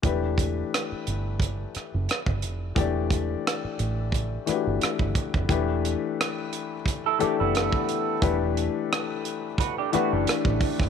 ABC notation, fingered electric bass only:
X:1
M:4/4
L:1/16
Q:"Swing 16ths" 1/4=88
K:Em
V:1 name="Fingered electric bass" clef=bass
E,,,4 z2 G,,,4 z F,,, z G,,, =F,,,2 | E,,,4 z2 A,,,4 z G,,, z G,,, z =F,,, | E,,,3 z8 F,,,2 z3 | E,,,3 z8 F,,, z A,,, z F,,, |]